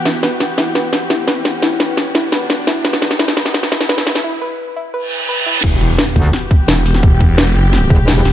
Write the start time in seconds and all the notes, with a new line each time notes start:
Already playing: E3 B3 F#4 G4, riser
0.05 E4, snare, closed hi-hat
0.23 B4, snare, closed hi-hat
0.40 snare, closed hi-hat
0.58 E4, snare, closed hi-hat
0.75 B4, snare, closed hi-hat
0.93 snare, closed hi-hat
1.10 E4, snare, closed hi-hat
1.28 B4, snare, closed hi-hat
1.45 snare, closed hi-hat
1.63 E4, snare, closed hi-hat
1.80 B4, snare, closed hi-hat
1.97 snare, closed hi-hat
2.15 E4, snare, closed hi-hat
2.32 B4, snare, closed hi-hat
2.50 snare, closed hi-hat
2.67 E4, snare, closed hi-hat
2.85 B4, snare, closed hi-hat
2.93 snare
3.02 snare, closed hi-hat
3.11 snare
3.19 E4, snare, closed hi-hat
3.28 snare
3.37 B4, snare, closed hi-hat
3.46 snare
3.54 snare, closed hi-hat
3.63 snare
3.72 E4, snare, closed hi-hat
3.81 snare
3.89 B4, snare, closed hi-hat
3.98 snare
4.07 snare, closed hi-hat
4.15 snare
4.24 E4
4.42 B4
4.76 E4
4.94 B4, reverse cymbal
5.29 B4
5.46 E4
5.64 E1 E3 B3 F#4 G4, kick, closed hi-hat, crash, impact
5.81 closed hi-hat
5.98 snare, closed hi-hat
6.07 closed hi-hat
6.16 D2, kick, closed hi-hat
6.33 snare, closed hi-hat
6.51 kick, closed hi-hat
6.68 E1, snare, closed hi-hat
6.77 closed hi-hat
6.86 open hi-hat
6.94 snare
7.03 kick, closed hi-hat
7.21 kick, closed hi-hat
7.38 snare, closed hi-hat
7.47 closed hi-hat
7.55 F#1, closed hi-hat
7.73 snare, closed hi-hat
7.90 E1, kick, closed hi-hat
8.08 snare, closed hi-hat
8.17 closed hi-hat
8.25 E1, snare, open hi-hat